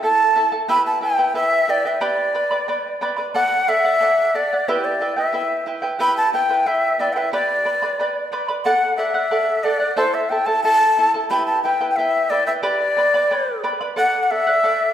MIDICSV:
0, 0, Header, 1, 3, 480
1, 0, Start_track
1, 0, Key_signature, 1, "minor"
1, 0, Tempo, 663717
1, 505, Time_signature, 2, 2, 24, 8
1, 10801, End_track
2, 0, Start_track
2, 0, Title_t, "Quena"
2, 0, Program_c, 0, 77
2, 31, Note_on_c, 0, 81, 101
2, 363, Note_off_c, 0, 81, 0
2, 502, Note_on_c, 0, 83, 107
2, 615, Note_off_c, 0, 83, 0
2, 624, Note_on_c, 0, 81, 80
2, 736, Note_off_c, 0, 81, 0
2, 746, Note_on_c, 0, 79, 88
2, 968, Note_off_c, 0, 79, 0
2, 983, Note_on_c, 0, 76, 102
2, 1228, Note_on_c, 0, 74, 92
2, 1239, Note_off_c, 0, 76, 0
2, 1353, Note_on_c, 0, 76, 78
2, 1363, Note_off_c, 0, 74, 0
2, 1469, Note_on_c, 0, 74, 82
2, 1480, Note_off_c, 0, 76, 0
2, 2187, Note_off_c, 0, 74, 0
2, 2423, Note_on_c, 0, 78, 99
2, 2665, Note_on_c, 0, 76, 96
2, 2676, Note_off_c, 0, 78, 0
2, 3149, Note_on_c, 0, 74, 90
2, 3160, Note_off_c, 0, 76, 0
2, 3387, Note_on_c, 0, 71, 79
2, 3398, Note_off_c, 0, 74, 0
2, 3503, Note_on_c, 0, 74, 73
2, 3514, Note_off_c, 0, 71, 0
2, 3741, Note_off_c, 0, 74, 0
2, 3746, Note_on_c, 0, 76, 86
2, 4080, Note_off_c, 0, 76, 0
2, 4344, Note_on_c, 0, 83, 99
2, 4456, Note_off_c, 0, 83, 0
2, 4464, Note_on_c, 0, 81, 90
2, 4576, Note_off_c, 0, 81, 0
2, 4583, Note_on_c, 0, 79, 85
2, 4823, Note_on_c, 0, 76, 98
2, 4833, Note_off_c, 0, 79, 0
2, 5063, Note_on_c, 0, 74, 86
2, 5074, Note_off_c, 0, 76, 0
2, 5154, Note_on_c, 0, 79, 65
2, 5165, Note_off_c, 0, 74, 0
2, 5187, Note_on_c, 0, 76, 77
2, 5198, Note_off_c, 0, 79, 0
2, 5297, Note_off_c, 0, 76, 0
2, 5302, Note_on_c, 0, 74, 90
2, 5994, Note_off_c, 0, 74, 0
2, 6254, Note_on_c, 0, 78, 91
2, 6482, Note_off_c, 0, 78, 0
2, 6486, Note_on_c, 0, 76, 92
2, 6968, Note_on_c, 0, 74, 90
2, 6979, Note_off_c, 0, 76, 0
2, 7205, Note_off_c, 0, 74, 0
2, 7210, Note_on_c, 0, 72, 89
2, 7334, Note_on_c, 0, 76, 75
2, 7345, Note_off_c, 0, 72, 0
2, 7445, Note_on_c, 0, 79, 80
2, 7456, Note_off_c, 0, 76, 0
2, 7565, Note_on_c, 0, 81, 92
2, 7576, Note_off_c, 0, 79, 0
2, 7686, Note_off_c, 0, 81, 0
2, 7690, Note_on_c, 0, 81, 118
2, 8032, Note_off_c, 0, 81, 0
2, 8173, Note_on_c, 0, 83, 91
2, 8287, Note_off_c, 0, 83, 0
2, 8292, Note_on_c, 0, 81, 81
2, 8407, Note_off_c, 0, 81, 0
2, 8411, Note_on_c, 0, 79, 82
2, 8594, Note_off_c, 0, 79, 0
2, 8611, Note_on_c, 0, 79, 68
2, 8654, Note_on_c, 0, 76, 99
2, 8665, Note_off_c, 0, 79, 0
2, 8894, Note_on_c, 0, 74, 97
2, 8905, Note_off_c, 0, 76, 0
2, 9011, Note_off_c, 0, 74, 0
2, 9015, Note_on_c, 0, 76, 81
2, 9059, Note_off_c, 0, 76, 0
2, 9147, Note_on_c, 0, 74, 90
2, 9839, Note_off_c, 0, 74, 0
2, 10113, Note_on_c, 0, 78, 110
2, 10290, Note_off_c, 0, 78, 0
2, 10290, Note_on_c, 0, 78, 75
2, 10347, Note_on_c, 0, 76, 101
2, 10358, Note_off_c, 0, 78, 0
2, 10801, Note_off_c, 0, 76, 0
2, 10801, End_track
3, 0, Start_track
3, 0, Title_t, "Charango"
3, 0, Program_c, 1, 24
3, 18, Note_on_c, 1, 76, 52
3, 22, Note_on_c, 1, 64, 70
3, 24, Note_on_c, 1, 69, 59
3, 31, Note_on_c, 1, 81, 62
3, 249, Note_off_c, 1, 76, 0
3, 250, Note_off_c, 1, 64, 0
3, 255, Note_off_c, 1, 69, 0
3, 256, Note_off_c, 1, 81, 0
3, 258, Note_on_c, 1, 64, 58
3, 258, Note_on_c, 1, 76, 58
3, 264, Note_on_c, 1, 69, 57
3, 265, Note_on_c, 1, 81, 58
3, 366, Note_off_c, 1, 81, 0
3, 370, Note_off_c, 1, 69, 0
3, 374, Note_off_c, 1, 64, 0
3, 375, Note_on_c, 1, 81, 59
3, 379, Note_on_c, 1, 69, 45
3, 381, Note_off_c, 1, 76, 0
3, 383, Note_on_c, 1, 64, 42
3, 492, Note_off_c, 1, 64, 0
3, 494, Note_on_c, 1, 67, 70
3, 497, Note_off_c, 1, 69, 0
3, 497, Note_off_c, 1, 81, 0
3, 498, Note_on_c, 1, 76, 80
3, 500, Note_on_c, 1, 64, 72
3, 500, Note_on_c, 1, 71, 81
3, 500, Note_on_c, 1, 79, 71
3, 722, Note_off_c, 1, 76, 0
3, 728, Note_off_c, 1, 64, 0
3, 731, Note_on_c, 1, 76, 55
3, 732, Note_off_c, 1, 71, 0
3, 735, Note_off_c, 1, 79, 0
3, 736, Note_on_c, 1, 64, 56
3, 739, Note_off_c, 1, 67, 0
3, 741, Note_on_c, 1, 71, 62
3, 744, Note_on_c, 1, 79, 61
3, 845, Note_off_c, 1, 79, 0
3, 851, Note_off_c, 1, 71, 0
3, 853, Note_off_c, 1, 64, 0
3, 854, Note_on_c, 1, 79, 56
3, 858, Note_off_c, 1, 76, 0
3, 859, Note_on_c, 1, 71, 55
3, 862, Note_on_c, 1, 64, 51
3, 967, Note_off_c, 1, 64, 0
3, 969, Note_off_c, 1, 71, 0
3, 972, Note_on_c, 1, 76, 56
3, 974, Note_off_c, 1, 79, 0
3, 976, Note_on_c, 1, 64, 65
3, 978, Note_on_c, 1, 71, 67
3, 983, Note_on_c, 1, 79, 64
3, 1205, Note_off_c, 1, 76, 0
3, 1212, Note_off_c, 1, 64, 0
3, 1212, Note_off_c, 1, 71, 0
3, 1213, Note_off_c, 1, 79, 0
3, 1214, Note_on_c, 1, 76, 53
3, 1220, Note_on_c, 1, 71, 56
3, 1221, Note_on_c, 1, 64, 61
3, 1222, Note_on_c, 1, 79, 57
3, 1329, Note_off_c, 1, 79, 0
3, 1332, Note_off_c, 1, 71, 0
3, 1337, Note_off_c, 1, 64, 0
3, 1337, Note_on_c, 1, 79, 51
3, 1339, Note_off_c, 1, 76, 0
3, 1340, Note_on_c, 1, 71, 53
3, 1346, Note_on_c, 1, 64, 47
3, 1446, Note_off_c, 1, 71, 0
3, 1447, Note_off_c, 1, 79, 0
3, 1451, Note_on_c, 1, 67, 74
3, 1452, Note_off_c, 1, 64, 0
3, 1454, Note_on_c, 1, 71, 84
3, 1455, Note_on_c, 1, 79, 83
3, 1457, Note_on_c, 1, 74, 78
3, 1457, Note_on_c, 1, 83, 82
3, 1687, Note_off_c, 1, 79, 0
3, 1690, Note_off_c, 1, 71, 0
3, 1692, Note_off_c, 1, 74, 0
3, 1694, Note_off_c, 1, 83, 0
3, 1696, Note_on_c, 1, 79, 57
3, 1698, Note_off_c, 1, 67, 0
3, 1698, Note_on_c, 1, 71, 60
3, 1701, Note_on_c, 1, 74, 56
3, 1703, Note_on_c, 1, 83, 65
3, 1804, Note_off_c, 1, 83, 0
3, 1811, Note_off_c, 1, 74, 0
3, 1813, Note_on_c, 1, 83, 59
3, 1815, Note_off_c, 1, 71, 0
3, 1819, Note_on_c, 1, 74, 58
3, 1820, Note_off_c, 1, 79, 0
3, 1824, Note_on_c, 1, 71, 42
3, 1935, Note_off_c, 1, 71, 0
3, 1936, Note_off_c, 1, 74, 0
3, 1938, Note_on_c, 1, 79, 58
3, 1939, Note_off_c, 1, 83, 0
3, 1944, Note_on_c, 1, 71, 55
3, 1945, Note_on_c, 1, 74, 60
3, 1948, Note_on_c, 1, 83, 61
3, 2170, Note_off_c, 1, 79, 0
3, 2173, Note_off_c, 1, 71, 0
3, 2177, Note_off_c, 1, 74, 0
3, 2178, Note_on_c, 1, 79, 62
3, 2180, Note_off_c, 1, 83, 0
3, 2182, Note_on_c, 1, 71, 71
3, 2186, Note_on_c, 1, 74, 74
3, 2188, Note_on_c, 1, 83, 73
3, 2281, Note_off_c, 1, 83, 0
3, 2290, Note_off_c, 1, 74, 0
3, 2290, Note_on_c, 1, 83, 50
3, 2296, Note_off_c, 1, 71, 0
3, 2299, Note_on_c, 1, 74, 47
3, 2301, Note_off_c, 1, 79, 0
3, 2304, Note_on_c, 1, 71, 45
3, 2416, Note_off_c, 1, 74, 0
3, 2417, Note_off_c, 1, 83, 0
3, 2419, Note_on_c, 1, 69, 79
3, 2424, Note_off_c, 1, 71, 0
3, 2426, Note_on_c, 1, 74, 84
3, 2426, Note_on_c, 1, 78, 86
3, 2653, Note_off_c, 1, 69, 0
3, 2656, Note_off_c, 1, 74, 0
3, 2662, Note_on_c, 1, 69, 49
3, 2664, Note_on_c, 1, 74, 61
3, 2665, Note_off_c, 1, 78, 0
3, 2673, Note_on_c, 1, 78, 63
3, 2772, Note_off_c, 1, 78, 0
3, 2780, Note_off_c, 1, 74, 0
3, 2781, Note_on_c, 1, 78, 54
3, 2783, Note_off_c, 1, 69, 0
3, 2789, Note_on_c, 1, 74, 48
3, 2894, Note_off_c, 1, 74, 0
3, 2897, Note_on_c, 1, 69, 59
3, 2899, Note_off_c, 1, 78, 0
3, 2907, Note_on_c, 1, 74, 60
3, 2907, Note_on_c, 1, 78, 65
3, 3132, Note_off_c, 1, 69, 0
3, 3137, Note_off_c, 1, 74, 0
3, 3141, Note_off_c, 1, 78, 0
3, 3141, Note_on_c, 1, 69, 56
3, 3146, Note_on_c, 1, 74, 58
3, 3150, Note_on_c, 1, 78, 61
3, 3262, Note_off_c, 1, 69, 0
3, 3265, Note_off_c, 1, 74, 0
3, 3265, Note_off_c, 1, 78, 0
3, 3274, Note_on_c, 1, 78, 55
3, 3282, Note_on_c, 1, 74, 48
3, 3385, Note_off_c, 1, 74, 0
3, 3386, Note_on_c, 1, 67, 84
3, 3387, Note_on_c, 1, 76, 77
3, 3388, Note_on_c, 1, 71, 77
3, 3389, Note_off_c, 1, 78, 0
3, 3389, Note_on_c, 1, 64, 89
3, 3392, Note_on_c, 1, 79, 80
3, 3612, Note_off_c, 1, 76, 0
3, 3617, Note_off_c, 1, 64, 0
3, 3618, Note_off_c, 1, 79, 0
3, 3620, Note_off_c, 1, 71, 0
3, 3621, Note_on_c, 1, 76, 54
3, 3625, Note_off_c, 1, 67, 0
3, 3625, Note_on_c, 1, 64, 47
3, 3627, Note_on_c, 1, 79, 62
3, 3628, Note_on_c, 1, 71, 64
3, 3726, Note_off_c, 1, 79, 0
3, 3734, Note_off_c, 1, 71, 0
3, 3734, Note_on_c, 1, 79, 57
3, 3738, Note_off_c, 1, 64, 0
3, 3742, Note_off_c, 1, 76, 0
3, 3743, Note_on_c, 1, 71, 55
3, 3747, Note_on_c, 1, 64, 46
3, 3848, Note_off_c, 1, 64, 0
3, 3851, Note_off_c, 1, 71, 0
3, 3851, Note_on_c, 1, 76, 60
3, 3855, Note_off_c, 1, 79, 0
3, 3857, Note_on_c, 1, 64, 58
3, 3860, Note_on_c, 1, 71, 58
3, 3864, Note_on_c, 1, 79, 61
3, 4085, Note_off_c, 1, 76, 0
3, 4088, Note_off_c, 1, 64, 0
3, 4092, Note_off_c, 1, 71, 0
3, 4093, Note_on_c, 1, 76, 55
3, 4096, Note_off_c, 1, 79, 0
3, 4096, Note_on_c, 1, 64, 60
3, 4101, Note_on_c, 1, 71, 63
3, 4105, Note_on_c, 1, 79, 58
3, 4200, Note_off_c, 1, 79, 0
3, 4209, Note_off_c, 1, 71, 0
3, 4209, Note_on_c, 1, 79, 65
3, 4214, Note_off_c, 1, 64, 0
3, 4218, Note_on_c, 1, 71, 53
3, 4219, Note_off_c, 1, 76, 0
3, 4223, Note_on_c, 1, 64, 50
3, 4330, Note_off_c, 1, 64, 0
3, 4330, Note_off_c, 1, 71, 0
3, 4331, Note_on_c, 1, 67, 72
3, 4333, Note_off_c, 1, 79, 0
3, 4337, Note_on_c, 1, 76, 80
3, 4338, Note_on_c, 1, 64, 76
3, 4339, Note_on_c, 1, 71, 76
3, 4342, Note_on_c, 1, 79, 91
3, 4571, Note_off_c, 1, 76, 0
3, 4574, Note_off_c, 1, 64, 0
3, 4578, Note_off_c, 1, 67, 0
3, 4578, Note_off_c, 1, 71, 0
3, 4580, Note_on_c, 1, 76, 51
3, 4581, Note_off_c, 1, 79, 0
3, 4583, Note_on_c, 1, 64, 64
3, 4587, Note_on_c, 1, 71, 58
3, 4590, Note_on_c, 1, 79, 69
3, 4689, Note_off_c, 1, 79, 0
3, 4695, Note_off_c, 1, 71, 0
3, 4698, Note_off_c, 1, 64, 0
3, 4698, Note_on_c, 1, 79, 51
3, 4702, Note_off_c, 1, 76, 0
3, 4703, Note_on_c, 1, 71, 54
3, 4707, Note_on_c, 1, 64, 49
3, 4811, Note_off_c, 1, 64, 0
3, 4811, Note_off_c, 1, 71, 0
3, 4816, Note_on_c, 1, 76, 60
3, 4819, Note_off_c, 1, 79, 0
3, 4820, Note_on_c, 1, 64, 60
3, 4820, Note_on_c, 1, 71, 58
3, 4828, Note_on_c, 1, 79, 72
3, 5048, Note_off_c, 1, 76, 0
3, 5050, Note_off_c, 1, 64, 0
3, 5055, Note_off_c, 1, 71, 0
3, 5056, Note_on_c, 1, 76, 55
3, 5058, Note_on_c, 1, 64, 60
3, 5059, Note_off_c, 1, 79, 0
3, 5064, Note_on_c, 1, 71, 59
3, 5068, Note_on_c, 1, 79, 59
3, 5168, Note_off_c, 1, 79, 0
3, 5170, Note_off_c, 1, 71, 0
3, 5177, Note_off_c, 1, 64, 0
3, 5177, Note_on_c, 1, 79, 50
3, 5178, Note_on_c, 1, 71, 51
3, 5180, Note_off_c, 1, 76, 0
3, 5186, Note_on_c, 1, 64, 47
3, 5292, Note_off_c, 1, 79, 0
3, 5294, Note_off_c, 1, 71, 0
3, 5300, Note_off_c, 1, 64, 0
3, 5301, Note_on_c, 1, 67, 75
3, 5301, Note_on_c, 1, 79, 73
3, 5303, Note_on_c, 1, 71, 82
3, 5306, Note_on_c, 1, 74, 79
3, 5306, Note_on_c, 1, 83, 81
3, 5524, Note_off_c, 1, 79, 0
3, 5528, Note_off_c, 1, 71, 0
3, 5532, Note_off_c, 1, 74, 0
3, 5532, Note_off_c, 1, 83, 0
3, 5533, Note_on_c, 1, 79, 57
3, 5536, Note_on_c, 1, 71, 56
3, 5540, Note_on_c, 1, 74, 53
3, 5540, Note_on_c, 1, 83, 56
3, 5543, Note_off_c, 1, 67, 0
3, 5649, Note_off_c, 1, 83, 0
3, 5655, Note_off_c, 1, 74, 0
3, 5658, Note_on_c, 1, 83, 55
3, 5659, Note_off_c, 1, 79, 0
3, 5660, Note_off_c, 1, 71, 0
3, 5664, Note_on_c, 1, 74, 53
3, 5668, Note_on_c, 1, 71, 53
3, 5776, Note_off_c, 1, 71, 0
3, 5781, Note_off_c, 1, 74, 0
3, 5781, Note_off_c, 1, 83, 0
3, 5782, Note_on_c, 1, 79, 56
3, 5785, Note_on_c, 1, 71, 57
3, 5790, Note_on_c, 1, 74, 67
3, 5791, Note_on_c, 1, 83, 64
3, 6007, Note_off_c, 1, 79, 0
3, 6012, Note_off_c, 1, 74, 0
3, 6013, Note_off_c, 1, 71, 0
3, 6015, Note_off_c, 1, 83, 0
3, 6016, Note_on_c, 1, 79, 57
3, 6020, Note_on_c, 1, 74, 64
3, 6021, Note_on_c, 1, 71, 63
3, 6024, Note_on_c, 1, 83, 67
3, 6127, Note_off_c, 1, 83, 0
3, 6135, Note_off_c, 1, 74, 0
3, 6136, Note_on_c, 1, 83, 59
3, 6139, Note_off_c, 1, 71, 0
3, 6140, Note_off_c, 1, 79, 0
3, 6143, Note_on_c, 1, 74, 49
3, 6148, Note_on_c, 1, 71, 45
3, 6254, Note_off_c, 1, 74, 0
3, 6258, Note_on_c, 1, 69, 76
3, 6260, Note_off_c, 1, 83, 0
3, 6262, Note_on_c, 1, 74, 78
3, 6264, Note_on_c, 1, 78, 87
3, 6266, Note_off_c, 1, 71, 0
3, 6484, Note_off_c, 1, 69, 0
3, 6491, Note_off_c, 1, 74, 0
3, 6493, Note_on_c, 1, 69, 53
3, 6494, Note_off_c, 1, 78, 0
3, 6500, Note_on_c, 1, 74, 59
3, 6502, Note_on_c, 1, 78, 68
3, 6603, Note_off_c, 1, 78, 0
3, 6612, Note_on_c, 1, 78, 57
3, 6615, Note_off_c, 1, 74, 0
3, 6619, Note_off_c, 1, 69, 0
3, 6623, Note_on_c, 1, 74, 46
3, 6726, Note_off_c, 1, 74, 0
3, 6732, Note_off_c, 1, 78, 0
3, 6734, Note_on_c, 1, 69, 64
3, 6735, Note_on_c, 1, 74, 66
3, 6741, Note_on_c, 1, 78, 58
3, 6965, Note_off_c, 1, 69, 0
3, 6965, Note_off_c, 1, 74, 0
3, 6973, Note_off_c, 1, 78, 0
3, 6973, Note_on_c, 1, 74, 58
3, 6974, Note_on_c, 1, 69, 64
3, 6982, Note_on_c, 1, 78, 67
3, 7077, Note_off_c, 1, 78, 0
3, 7085, Note_on_c, 1, 78, 52
3, 7091, Note_off_c, 1, 74, 0
3, 7097, Note_off_c, 1, 69, 0
3, 7100, Note_on_c, 1, 74, 49
3, 7206, Note_on_c, 1, 72, 74
3, 7208, Note_off_c, 1, 74, 0
3, 7209, Note_on_c, 1, 76, 85
3, 7210, Note_on_c, 1, 64, 84
3, 7211, Note_on_c, 1, 69, 89
3, 7213, Note_off_c, 1, 78, 0
3, 7216, Note_on_c, 1, 81, 91
3, 7444, Note_off_c, 1, 76, 0
3, 7448, Note_off_c, 1, 64, 0
3, 7452, Note_off_c, 1, 69, 0
3, 7453, Note_on_c, 1, 76, 57
3, 7454, Note_off_c, 1, 81, 0
3, 7456, Note_off_c, 1, 72, 0
3, 7456, Note_on_c, 1, 64, 55
3, 7461, Note_on_c, 1, 69, 55
3, 7463, Note_on_c, 1, 81, 58
3, 7559, Note_off_c, 1, 81, 0
3, 7566, Note_off_c, 1, 69, 0
3, 7568, Note_on_c, 1, 81, 59
3, 7569, Note_off_c, 1, 64, 0
3, 7574, Note_on_c, 1, 69, 51
3, 7578, Note_on_c, 1, 64, 54
3, 7579, Note_off_c, 1, 76, 0
3, 7689, Note_off_c, 1, 64, 0
3, 7691, Note_off_c, 1, 69, 0
3, 7694, Note_off_c, 1, 81, 0
3, 7695, Note_on_c, 1, 76, 61
3, 7698, Note_on_c, 1, 64, 61
3, 7700, Note_on_c, 1, 69, 58
3, 7702, Note_on_c, 1, 81, 68
3, 7929, Note_off_c, 1, 76, 0
3, 7937, Note_off_c, 1, 64, 0
3, 7938, Note_off_c, 1, 69, 0
3, 7938, Note_on_c, 1, 76, 53
3, 7939, Note_off_c, 1, 81, 0
3, 7945, Note_on_c, 1, 64, 55
3, 7947, Note_on_c, 1, 69, 63
3, 7947, Note_on_c, 1, 81, 59
3, 8048, Note_off_c, 1, 81, 0
3, 8053, Note_off_c, 1, 69, 0
3, 8057, Note_on_c, 1, 81, 58
3, 8061, Note_off_c, 1, 64, 0
3, 8061, Note_on_c, 1, 69, 54
3, 8062, Note_off_c, 1, 76, 0
3, 8070, Note_on_c, 1, 64, 48
3, 8169, Note_off_c, 1, 64, 0
3, 8174, Note_on_c, 1, 67, 71
3, 8175, Note_off_c, 1, 69, 0
3, 8177, Note_on_c, 1, 64, 84
3, 8177, Note_on_c, 1, 76, 66
3, 8178, Note_off_c, 1, 81, 0
3, 8178, Note_on_c, 1, 71, 81
3, 8181, Note_on_c, 1, 79, 81
3, 8408, Note_off_c, 1, 76, 0
3, 8415, Note_off_c, 1, 64, 0
3, 8415, Note_off_c, 1, 71, 0
3, 8416, Note_on_c, 1, 76, 50
3, 8420, Note_off_c, 1, 67, 0
3, 8420, Note_off_c, 1, 79, 0
3, 8423, Note_on_c, 1, 64, 51
3, 8423, Note_on_c, 1, 71, 63
3, 8429, Note_on_c, 1, 79, 60
3, 8530, Note_off_c, 1, 79, 0
3, 8533, Note_off_c, 1, 71, 0
3, 8538, Note_on_c, 1, 79, 55
3, 8539, Note_off_c, 1, 64, 0
3, 8541, Note_off_c, 1, 76, 0
3, 8542, Note_on_c, 1, 71, 53
3, 8547, Note_on_c, 1, 64, 44
3, 8657, Note_off_c, 1, 64, 0
3, 8659, Note_off_c, 1, 71, 0
3, 8662, Note_off_c, 1, 79, 0
3, 8663, Note_on_c, 1, 76, 54
3, 8666, Note_on_c, 1, 64, 61
3, 8668, Note_on_c, 1, 71, 65
3, 8674, Note_on_c, 1, 79, 69
3, 8891, Note_off_c, 1, 76, 0
3, 8893, Note_off_c, 1, 64, 0
3, 8898, Note_off_c, 1, 71, 0
3, 8899, Note_on_c, 1, 76, 55
3, 8901, Note_off_c, 1, 79, 0
3, 8902, Note_on_c, 1, 64, 53
3, 8906, Note_on_c, 1, 71, 60
3, 8909, Note_on_c, 1, 79, 59
3, 9007, Note_off_c, 1, 79, 0
3, 9014, Note_off_c, 1, 71, 0
3, 9016, Note_on_c, 1, 79, 53
3, 9020, Note_off_c, 1, 64, 0
3, 9022, Note_on_c, 1, 71, 44
3, 9023, Note_off_c, 1, 76, 0
3, 9029, Note_on_c, 1, 64, 47
3, 9124, Note_off_c, 1, 79, 0
3, 9127, Note_off_c, 1, 71, 0
3, 9131, Note_on_c, 1, 67, 78
3, 9133, Note_off_c, 1, 64, 0
3, 9133, Note_on_c, 1, 79, 74
3, 9136, Note_on_c, 1, 71, 76
3, 9137, Note_on_c, 1, 74, 95
3, 9137, Note_on_c, 1, 83, 87
3, 9370, Note_off_c, 1, 79, 0
3, 9375, Note_off_c, 1, 71, 0
3, 9377, Note_off_c, 1, 74, 0
3, 9379, Note_off_c, 1, 67, 0
3, 9379, Note_on_c, 1, 79, 58
3, 9382, Note_off_c, 1, 83, 0
3, 9383, Note_on_c, 1, 71, 63
3, 9385, Note_on_c, 1, 74, 53
3, 9390, Note_on_c, 1, 83, 58
3, 9494, Note_off_c, 1, 83, 0
3, 9503, Note_off_c, 1, 71, 0
3, 9503, Note_off_c, 1, 74, 0
3, 9503, Note_off_c, 1, 79, 0
3, 9503, Note_on_c, 1, 83, 55
3, 9511, Note_on_c, 1, 74, 55
3, 9512, Note_on_c, 1, 71, 46
3, 9618, Note_off_c, 1, 71, 0
3, 9622, Note_off_c, 1, 74, 0
3, 9624, Note_on_c, 1, 79, 61
3, 9625, Note_off_c, 1, 83, 0
3, 9627, Note_on_c, 1, 71, 60
3, 9631, Note_on_c, 1, 74, 59
3, 9635, Note_on_c, 1, 83, 62
3, 9852, Note_off_c, 1, 79, 0
3, 9853, Note_off_c, 1, 71, 0
3, 9856, Note_off_c, 1, 74, 0
3, 9859, Note_off_c, 1, 83, 0
3, 9861, Note_on_c, 1, 71, 66
3, 9861, Note_on_c, 1, 79, 58
3, 9864, Note_on_c, 1, 74, 65
3, 9868, Note_on_c, 1, 83, 69
3, 9976, Note_off_c, 1, 83, 0
3, 9977, Note_off_c, 1, 74, 0
3, 9985, Note_off_c, 1, 71, 0
3, 9985, Note_off_c, 1, 79, 0
3, 9985, Note_on_c, 1, 83, 61
3, 9986, Note_on_c, 1, 74, 48
3, 9993, Note_on_c, 1, 71, 53
3, 10093, Note_off_c, 1, 74, 0
3, 10097, Note_on_c, 1, 69, 78
3, 10102, Note_on_c, 1, 74, 69
3, 10103, Note_off_c, 1, 83, 0
3, 10105, Note_on_c, 1, 78, 83
3, 10111, Note_off_c, 1, 71, 0
3, 10340, Note_off_c, 1, 69, 0
3, 10343, Note_off_c, 1, 74, 0
3, 10345, Note_off_c, 1, 78, 0
3, 10348, Note_on_c, 1, 69, 50
3, 10352, Note_on_c, 1, 74, 54
3, 10354, Note_on_c, 1, 78, 63
3, 10452, Note_off_c, 1, 78, 0
3, 10461, Note_on_c, 1, 78, 61
3, 10467, Note_off_c, 1, 74, 0
3, 10469, Note_off_c, 1, 69, 0
3, 10476, Note_on_c, 1, 74, 49
3, 10582, Note_off_c, 1, 74, 0
3, 10585, Note_off_c, 1, 78, 0
3, 10585, Note_on_c, 1, 69, 62
3, 10591, Note_on_c, 1, 74, 67
3, 10595, Note_on_c, 1, 78, 65
3, 10801, Note_off_c, 1, 69, 0
3, 10801, Note_off_c, 1, 74, 0
3, 10801, Note_off_c, 1, 78, 0
3, 10801, End_track
0, 0, End_of_file